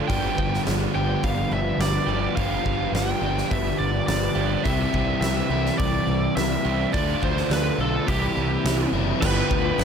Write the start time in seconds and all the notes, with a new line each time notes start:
Already playing: D4 F4
0.08 G1 G2 D3 F3 G3 B3 G4 G5, kick, open hi-hat
0.37 G1 F3, kick
0.54 snare
0.66 G1 D4, snare, open hi-hat
0.94 G1 G2 D3 F3 G3 B3 G4 G5
1.23 G1 B3 F5, kick, open hi-hat
1.51 G1 D4 E5
1.78 G1 B3 D5, snare, open hi-hat
2.06 G1 D3 F3 G3 B3 G4
2.10 G2
2.36 G1 G2 D3 F3 G3 B3 G4 F5, kick, open hi-hat
2.65 G1 F3, kick
2.92 G1 D4 G5, snare, open hi-hat
3.21 G1 G2 D3 F3 G3 B3 G4
3.37 snare
3.51 G1 B3 E5, kick, open hi-hat
3.79 G1 D4 D5
4.07 G1 B3 D5, snare, open hi-hat
4.35 G1 D3 F3 G3 B3 G4
4.39 G2
4.64 C2 C3 E3 G3 C4 G4 E5, kick, open hi-hat
4.93 C2 G3, kick
5.21 C2 E4 E5, snare, open hi-hat
5.50 C2 C3 E3 G3 C4 G4
5.66 snare
5.78 C2 D5, kick, open hi-hat
6.07 C2 E4
6.36 C2 E5, snare, open hi-hat
6.64 C2 C3 E3 G3 C4 G4
6.92 D2 D3 F3 A3 D4 F4 D5, kick, open hi-hat
7.22 D2 F3 C5, kick
7.37 snare
7.50 D2 D4 B4, snare, open hi-hat
7.78 B1 D3 F3 A3 D4 F4 A4
8.06 C2 C3 E3 G3 C4 E4 G4, kick, open hi-hat
8.37 C2 E4
8.65 C2, snare, open hi-hat
8.93 F#1 C3 E3 G3 B3 C4 E4
9.20 G1 G2 D3 F3 G3 B3 G4 B4, kick, crash
9.24 F4 G5 D6
9.51 D2, kick
9.78 G1 D4, snare, crash